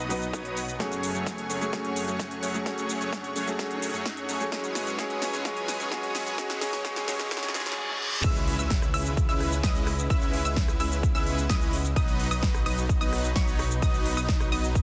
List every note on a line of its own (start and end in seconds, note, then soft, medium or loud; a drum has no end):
0.00 0.31 B1 loud
0.00 0.09 B2 medium
0.00 0.10 F#3 medium
0.00 0.25 F#3 medium
0.00 0.10 B3 medium
0.00 0.25 B3 medium
0.00 0.11 D#4 medium
0.00 0.25 D#4 medium
0.00 0.11 B4 medium
0.00 0.25 B4 medium
0.00 0.76 B4 medium
0.00 0.25 D#5 loud
0.00 0.76 D#5 medium
0.00 0.76 F#5 medium
0.00 0.76 D#6 medium
0.00 riser medium
0.09 0.77 B2 medium
0.09 0.77 F#3 medium
0.09 0.77 B3 medium
0.09 0.77 D#4 medium
0.09 0.78 B4 loud
0.09 open hi-hat loud
0.09 cabasa medium
0.22 closed hi-hat soft
0.22 cabasa soft
0.33 0.78 B1 loud
0.33 0.60 F#3 medium
0.33 0.60 B3 medium
0.33 0.60 D#4 medium
0.33 0.60 B4 medium
0.33 0.60 C#5 medium
0.33 kick loud
0.33 closed hi-hat medium
0.33 cabasa soft
0.45 closed hi-hat soft
0.57 open hi-hat loud
0.57 cabasa medium
0.68 closed hi-hat soft
0.68 cabasa soft
0.79 1.13 F#1 loud
0.79 1.58 F#3 medium
0.79 1.12 F#3 medium
0.79 1.58 A3 medium
0.79 1.12 A3 medium
0.79 4.48 A3 medium
0.79 1.12 C#4 medium
0.79 1.59 C#4 medium
0.79 1.12 G#4 medium
0.79 1.59 G#4 loud
0.79 1.12 C#5 medium
0.79 7.74 F#5 medium
0.79 2.64 G#5 medium
0.79 4.48 C#6 medium
0.79 kick loud
0.79 snare soft
0.79 closed hi-hat medium
0.79 cabasa soft
0.92 closed hi-hat soft
0.92 cabasa soft
1.03 open hi-hat loud
1.03 cabasa medium
1.15 1.47 F#1 loud
1.15 1.41 F#3 medium
1.15 1.41 A3 medium
1.15 1.41 C#4 medium
1.15 1.41 G#4 medium
1.15 1.41 C#5 medium
1.15 closed hi-hat soft
1.15 cabasa soft
1.26 kick loud
1.26 snare soft
1.26 closed hi-hat medium
1.26 cabasa soft
1.38 closed hi-hat soft
1.50 1.71 F#1 loud
1.50 1.66 F#3 medium
1.50 1.66 A3 medium
1.50 1.66 C#4 medium
1.50 1.66 G#4 medium
1.50 1.66 C#5 medium
1.50 open hi-hat loud
1.50 cabasa medium
1.61 1.70 F#3 medium
1.61 1.71 A3 medium
1.61 1.71 C#4 medium
1.61 1.71 G#4 medium
1.61 closed hi-hat soft
1.61 cabasa soft
1.72 2.06 F#1 loud
1.72 2.51 F#3 medium
1.72 2.51 A3 medium
1.72 2.05 A3 medium
1.72 2.05 C#4 medium
1.72 2.52 C#4 medium
1.72 2.05 G#4 medium
1.72 2.52 G#4 loud
1.72 2.05 C#5 medium
1.72 kick loud
1.72 snare medium
1.72 closed hi-hat medium
1.72 cabasa soft
1.85 closed hi-hat soft
1.96 open hi-hat loud
1.96 cabasa medium
2.08 2.40 F#1 loud
2.08 2.34 F#3 medium
2.08 2.34 A3 medium
2.08 2.34 C#4 medium
2.08 2.34 G#4 medium
2.08 2.34 C#5 medium
2.08 closed hi-hat soft
2.08 cabasa soft
2.19 kick loud
2.19 snare medium
2.19 closed hi-hat medium
2.19 cabasa soft
2.31 closed hi-hat soft
2.43 2.64 F#1 loud
2.43 2.59 F#3 medium
2.43 2.59 A3 medium
2.43 2.59 C#4 medium
2.43 2.59 G#4 medium
2.43 2.59 C#5 medium
2.43 open hi-hat loud
2.43 cabasa medium
2.54 2.63 F#3 medium
2.54 2.64 A3 medium
2.54 2.64 C#4 medium
2.54 2.64 G#4 loud
2.54 closed hi-hat soft
2.54 cabasa soft
2.65 2.99 F#1 loud
2.65 3.44 F#3 medium
2.65 2.98 F#3 medium
2.65 3.44 A3 medium
2.65 2.98 A3 medium
2.65 2.98 C#4 medium
2.65 3.45 C#4 medium
2.65 2.98 G#4 medium
2.65 3.45 G#4 loud
2.65 2.98 C#5 medium
2.65 kick loud
2.65 snare medium
2.65 closed hi-hat medium
2.65 cabasa soft
2.78 closed hi-hat soft
2.78 cabasa soft
2.89 open hi-hat loud
2.89 cabasa medium
3.01 3.33 F#1 loud
3.01 3.27 F#3 medium
3.01 3.27 A3 medium
3.01 3.27 C#4 medium
3.01 3.27 G#4 medium
3.01 3.27 C#5 medium
3.01 closed hi-hat soft
3.01 cabasa soft
3.13 kick loud
3.13 snare medium
3.13 closed hi-hat medium
3.13 cabasa soft
3.24 closed hi-hat soft
3.36 3.57 F#1 loud
3.36 3.52 F#3 medium
3.36 3.52 A3 medium
3.36 3.52 C#4 medium
3.36 3.52 G#4 medium
3.36 3.52 C#5 medium
3.36 open hi-hat loud
3.36 cabasa medium
3.47 3.56 F#3 medium
3.47 3.57 A3 medium
3.47 3.57 C#4 medium
3.47 3.57 G#4 loud
3.47 closed hi-hat soft
3.47 cabasa soft
3.58 3.92 F#1 loud
3.58 4.37 F#3 medium
3.58 3.91 F#3 medium
3.58 4.37 A3 medium
3.58 3.91 A3 medium
3.58 3.91 C#4 medium
3.58 4.38 C#4 medium
3.58 3.91 G#4 medium
3.58 4.38 G#4 loud
3.58 3.91 C#5 medium
3.58 kick loud
3.58 snare medium
3.58 closed hi-hat medium
3.58 cabasa soft
3.71 closed hi-hat soft
3.82 open hi-hat loud
3.82 cabasa medium
3.94 4.26 F#2 loud
3.94 4.20 F#3 medium
3.94 4.20 A3 medium
3.94 4.20 C#4 medium
3.94 4.20 G#4 medium
3.94 4.20 C#5 medium
3.94 closed hi-hat soft
3.94 cabasa soft
4.06 kick loud
4.06 snare medium
4.06 closed hi-hat medium
4.06 cabasa soft
4.17 closed hi-hat soft
4.29 4.50 F#2 loud
4.29 4.45 F#3 medium
4.29 4.45 A3 medium
4.29 4.45 C#4 medium
4.29 4.45 G#4 medium
4.29 4.45 C#5 medium
4.29 open hi-hat loud
4.29 cabasa medium
4.40 4.49 F#3 medium
4.40 4.50 A3 medium
4.40 4.50 C#4 medium
4.40 4.51 G#4 loud
4.40 closed hi-hat soft
4.40 cabasa soft
4.51 4.85 G#1 loud
4.51 4.96 F#3 medium
4.51 4.84 F#3 medium
4.51 4.97 G#3 medium
4.51 4.84 G#3 medium
4.51 4.84 C#4 medium
4.51 4.97 C#4 medium
4.51 4.84 G#4 medium
4.51 4.97 G#4 loud
4.51 7.74 B4 medium
4.51 4.84 C#5 medium
4.51 7.74 G#5 medium
4.51 7.74 D#6 medium
4.51 kick loud
4.51 snare medium
4.51 closed hi-hat medium
4.51 cabasa soft
4.64 closed hi-hat soft
4.64 cabasa soft
4.75 snare medium
4.75 open hi-hat loud
4.75 cabasa medium
4.87 4.96 G#1 loud
4.87 4.97 F#3 medium
4.87 4.97 G#3 medium
4.87 4.97 C#4 medium
4.87 4.97 G#4 medium
4.87 4.97 C#5 medium
4.87 closed hi-hat soft
4.87 cabasa soft
4.97 5.31 G#1 loud
4.97 5.43 F#3 loud
4.97 5.31 F#3 medium
4.97 5.43 G#3 medium
4.97 5.31 G#3 medium
4.97 5.31 C#4 medium
4.97 5.44 C#4 medium
4.97 5.31 G#4 medium
4.97 5.44 G#4 loud
4.97 5.31 C#5 medium
4.97 kick loud
4.97 snare medium
4.97 closed hi-hat medium
4.97 cabasa soft
5.10 closed hi-hat soft
5.22 snare medium
5.22 open hi-hat loud
5.22 cabasa medium
5.33 5.43 G#1 loud
5.33 5.43 F#3 medium
5.33 5.43 G#3 medium
5.33 5.43 C#4 medium
5.33 5.43 G#4 medium
5.33 5.43 C#5 medium
5.33 closed hi-hat soft
5.33 cabasa soft
5.44 5.78 G#1 loud
5.44 5.89 F#3 loud
5.44 5.77 F#3 medium
5.44 5.90 G#3 medium
5.44 5.77 G#3 medium
5.44 5.90 C#4 medium
5.44 5.90 G#4 loud
5.44 kick loud
5.44 snare medium
5.44 closed hi-hat medium
5.44 cabasa soft
5.57 closed hi-hat soft
5.68 snare medium
5.68 open hi-hat loud
5.68 cabasa medium
5.80 5.89 G#1 loud
5.80 5.90 F#3 medium
5.80 5.90 G#3 medium
5.80 5.90 C#4 medium
5.80 5.90 G#4 medium
5.80 5.90 C#5 medium
5.80 closed hi-hat soft
5.80 cabasa soft
5.90 6.24 G#1 loud
5.90 6.35 F#3 loud
5.90 6.36 G#3 medium
5.90 6.24 G#3 medium
5.90 6.36 C#4 loud
5.90 6.24 G#4 medium
5.90 6.37 G#4 loud
5.90 6.24 C#5 loud
5.90 kick loud
5.90 snare medium
5.90 closed hi-hat medium
5.90 cabasa soft
6.03 closed hi-hat soft
6.15 snare medium
6.15 open hi-hat loud
6.15 cabasa medium
6.26 6.36 G#1 loud
6.26 6.36 F#3 medium
6.26 6.36 G#3 medium
6.26 6.36 C#4 medium
6.26 6.36 G#4 medium
6.26 6.36 C#5 medium
6.26 closed hi-hat soft
6.26 cabasa soft
6.37 6.59 G#1 loud
6.37 6.59 F#3 loud
6.37 6.59 F#3 medium
6.37 6.59 G#3 medium
6.37 6.59 C#4 medium
6.37 6.60 C#4 medium
6.37 6.59 G#4 medium
6.37 6.60 G#4 loud
6.37 6.59 C#5 medium
6.37 kick loud
6.37 snare medium
6.37 closed hi-hat medium
6.37 cabasa soft
6.50 snare medium
6.50 closed hi-hat soft
6.50 cabasa soft
6.60 6.82 G#1 loud
6.60 6.82 F#3 loud
6.60 6.83 F#3 medium
6.60 6.83 G#3 medium
6.60 6.83 C#4 medium
6.60 6.83 G#4 medium
6.60 6.83 G#4 loud
6.60 6.83 C#5 loud
6.60 snare loud
6.60 open hi-hat loud
6.60 cabasa medium
6.73 snare medium
6.73 closed hi-hat soft
6.73 cabasa soft
6.83 7.06 G#1 loud
6.83 7.05 F#3 loud
6.83 7.06 F#3 medium
6.83 7.06 G#3 medium
6.83 7.06 C#4 medium
6.83 7.06 G#4 medium
6.83 7.07 G#4 loud
6.83 7.06 C#5 loud
6.83 kick loud
6.83 snare loud
6.83 closed hi-hat medium
6.83 cabasa soft
6.96 snare medium
6.96 closed hi-hat soft
6.96 cabasa soft
7.07 7.29 G#1 loud
7.07 7.28 F#3 loud
7.07 7.29 F#3 medium
7.07 7.29 G#3 medium
7.07 7.29 C#4 medium
7.07 7.29 G#4 medium
7.07 7.30 G#4 loud
7.07 7.29 C#5 loud
7.07 snare loud
7.07 open hi-hat loud
7.07 cabasa medium
7.20 snare medium
7.20 closed hi-hat soft
7.20 cabasa soft
7.30 7.52 G#1 loud
7.30 7.52 F#3 loud
7.30 7.53 F#3 medium
7.30 7.52 G#3 medium
7.30 7.53 C#4 medium
7.30 7.53 G#4 loud
7.30 7.53 C#5 loud
7.30 kick loud
7.30 snare loud
7.30 closed hi-hat medium
7.30 reverse cymbal medium
7.30 cabasa soft
7.37 snare medium
7.43 snare medium
7.43 closed hi-hat soft
7.43 cabasa soft
7.48 snare medium
7.53 7.75 G#1 medium
7.53 7.75 F#3 loud
7.53 7.76 F#3 medium
7.53 7.76 G#3 medium
7.53 7.76 C#4 medium
7.53 7.76 G#4 medium
7.53 7.76 G#4 loud
7.53 7.76 C#5 loud
7.53 snare loud
7.53 open hi-hat loud
7.53 cabasa medium
7.60 snare medium
7.66 snare medium
7.66 closed hi-hat soft
7.66 cabasa soft
7.72 snare medium
7.78 high tom medium
7.89 high tom medium
8.13 mid tom medium
8.24 8.57 C#2 loud
8.24 11.93 C#3 medium
8.24 8.56 G#3 medium
8.24 11.93 G#3 medium
8.24 11.93 B3 medium
8.24 8.56 C#4 medium
8.24 8.56 E4 medium
8.24 11.93 E4 medium
8.24 8.56 B4 medium
8.24 8.56 E5 medium
8.24 8.56 E6 loud
8.24 kick loud
8.24 closed hi-hat loud
8.24 crash loud
8.24 impact medium
8.24 cabasa medium
8.36 closed hi-hat soft
8.36 cabasa soft
8.47 open hi-hat loud
8.59 8.92 C#2 loud
8.59 8.86 G#3 medium
8.59 8.86 C#4 medium
8.59 8.86 E4 medium
8.59 8.86 B4 medium
8.59 8.86 E5 medium
8.59 8.86 E6 medium
8.59 closed hi-hat soft
8.59 cabasa medium
8.70 kick loud
8.70 snare loud
8.70 closed hi-hat loud
8.70 cabasa medium
8.82 cross-stick medium
8.82 closed hi-hat soft
8.82 cabasa soft
8.94 9.26 C#2 loud
8.94 9.11 G#3 medium
8.94 9.11 C#4 medium
8.94 9.11 E4 medium
8.94 9.11 B4 medium
8.94 9.11 E5 medium
8.94 9.11 E6 medium
8.94 open hi-hat loud
9.06 closed hi-hat soft
9.06 cabasa medium
9.17 kick loud
9.17 closed hi-hat loud
9.17 cabasa medium
9.29 9.61 C#2 loud
9.29 9.55 G#3 medium
9.29 9.55 C#4 medium
9.29 9.55 E4 medium
9.29 9.55 B4 medium
9.29 9.55 E5 loud
9.29 9.55 E6 medium
9.29 closed hi-hat soft
9.29 cabasa soft
9.40 cross-stick medium
9.40 open hi-hat loud
9.52 closed hi-hat soft
9.52 cabasa medium
9.63 10.08 C#2 loud
9.63 9.90 G#3 medium
9.63 9.90 C#4 medium
9.63 9.90 E4 medium
9.63 9.90 B4 medium
9.63 9.90 D#5 medium
9.63 9.90 D#6 medium
9.63 kick loud
9.63 snare loud
9.63 closed hi-hat loud
9.63 cabasa medium
9.75 closed hi-hat soft
9.75 cabasa soft
9.87 cross-stick medium
9.87 open hi-hat loud
9.99 closed hi-hat soft
9.99 cabasa medium
10.10 10.43 C#2 loud
10.10 10.42 G#3 medium
10.10 10.42 C#4 medium
10.10 10.42 E4 medium
10.10 10.42 B4 medium
10.10 10.42 E5 medium
10.10 10.42 E6 medium
10.10 kick loud
10.10 closed hi-hat medium
10.10 cabasa medium
10.22 closed hi-hat soft
10.22 cabasa soft
10.33 open hi-hat loud
10.45 10.78 C#2 loud
10.45 10.72 G#3 medium
10.45 10.72 C#4 medium
10.45 10.72 E4 medium
10.45 10.72 B4 medium
10.45 10.72 E5 medium
10.45 10.72 E6 medium
10.45 closed hi-hat soft
10.45 cabasa medium
10.56 kick loud
10.56 snare loud
10.56 closed hi-hat loud
10.56 cabasa medium
10.68 cross-stick medium
10.68 closed hi-hat soft
10.68 cabasa soft
10.80 11.12 C#2 loud
10.80 10.97 G#3 medium
10.80 10.97 C#4 medium
10.80 10.97 E4 medium
10.80 10.97 B4 medium
10.80 10.97 E5 medium
10.80 10.97 E6 medium
10.80 open hi-hat loud
10.92 closed hi-hat soft
10.92 cabasa medium
11.03 kick loud
11.03 closed hi-hat medium
11.03 cabasa medium
11.15 11.47 C#2 loud
11.15 11.41 G#3 medium
11.15 11.41 C#4 medium
11.15 11.41 E4 medium
11.15 11.41 B4 medium
11.15 11.41 E5 loud
11.15 11.41 E6 medium
11.15 closed hi-hat soft
11.15 cabasa soft
11.27 open hi-hat loud
11.38 closed hi-hat soft
11.38 cabasa medium
11.49 11.94 C#2 loud
11.49 11.76 G#3 medium
11.49 11.76 C#4 medium
11.49 11.76 E4 medium
11.49 11.76 B4 medium
11.49 11.76 D#5 medium
11.49 11.76 D#6 loud
11.49 kick loud
11.49 snare loud
11.49 closed hi-hat loud
11.49 cabasa medium
11.61 closed hi-hat soft
11.61 cabasa soft
11.73 open hi-hat loud
11.85 closed hi-hat soft
11.85 cabasa medium
11.96 12.29 B1 medium
11.96 12.28 F#3 medium
11.96 14.82 F#3 medium
11.96 12.28 B3 medium
11.96 14.82 B3 medium
11.96 12.28 D#4 medium
11.96 14.82 D#4 medium
11.96 12.28 B4 medium
11.96 12.28 D#5 medium
11.96 12.28 D#6 loud
11.96 kick loud
11.96 closed hi-hat medium
11.96 cabasa medium
12.08 closed hi-hat soft
12.08 cabasa soft
12.20 open hi-hat loud
12.31 12.64 B1 loud
12.31 12.58 F#3 medium
12.31 12.58 B3 medium
12.31 12.58 D#4 medium
12.31 12.58 B4 medium
12.31 12.58 D#5 medium
12.31 12.58 D#6 medium
12.31 closed hi-hat soft
12.31 cabasa medium
12.43 kick loud
12.43 snare loud
12.43 closed hi-hat medium
12.43 cabasa medium
12.54 cross-stick medium
12.54 closed hi-hat soft
12.54 cabasa soft
12.66 12.99 B1 loud
12.66 12.83 F#3 medium
12.66 12.83 B3 medium
12.66 12.83 D#4 medium
12.66 12.83 B4 medium
12.66 12.83 D#5 medium
12.66 12.83 D#6 medium
12.66 open hi-hat loud
12.78 closed hi-hat soft
12.78 cabasa medium
12.89 kick loud
12.89 closed hi-hat medium
12.89 cabasa medium
13.01 13.33 B1 loud
13.01 13.27 F#3 medium
13.01 13.27 B3 medium
13.01 13.27 D#4 medium
13.01 13.27 B4 medium
13.01 13.27 D#5 loud
13.01 13.27 D#6 loud
13.01 closed hi-hat soft
13.01 cabasa soft
13.13 cross-stick medium
13.13 open hi-hat loud
13.24 closed hi-hat soft
13.24 cabasa medium
13.36 13.80 B1 loud
13.36 13.62 F#3 medium
13.36 13.62 B3 medium
13.36 13.62 D#4 medium
13.36 13.62 B4 medium
13.36 13.62 C#5 medium
13.36 13.62 C#6 medium
13.36 kick loud
13.36 snare loud
13.36 closed hi-hat medium
13.36 cabasa medium
13.48 closed hi-hat soft
13.48 cabasa soft
13.59 cross-stick medium
13.59 open hi-hat loud
13.71 closed hi-hat soft
13.71 cabasa medium
13.82 14.15 B1 loud
13.82 14.14 F#3 medium
13.82 14.14 B3 medium
13.82 14.14 D#4 medium
13.82 14.14 B4 medium
13.82 14.14 D#5 medium
13.82 14.14 D#6 medium
13.82 kick loud
13.82 closed hi-hat medium
13.82 cabasa medium
13.94 closed hi-hat soft
13.94 cabasa soft
14.06 open hi-hat loud
14.17 14.50 B1 loud
14.17 14.44 F#3 medium
14.17 14.44 B3 medium
14.17 14.44 D#4 medium
14.17 14.44 B4 medium
14.17 14.44 D#5 medium
14.17 14.44 D#6 medium
14.17 closed hi-hat soft
14.17 cabasa medium
14.29 kick loud
14.29 snare loud
14.29 closed hi-hat medium
14.29 cabasa medium
14.40 cross-stick medium
14.40 closed hi-hat soft
14.40 cabasa soft
14.52 14.82 B1 loud
14.52 14.69 F#3 medium
14.52 14.69 B3 medium
14.52 14.69 D#4 medium
14.52 14.69 B4 medium
14.52 14.69 D#5 medium
14.52 14.69 D#6 medium
14.52 open hi-hat loud
14.64 closed hi-hat soft
14.64 cabasa medium
14.75 kick loud
14.75 closed hi-hat medium
14.75 cabasa medium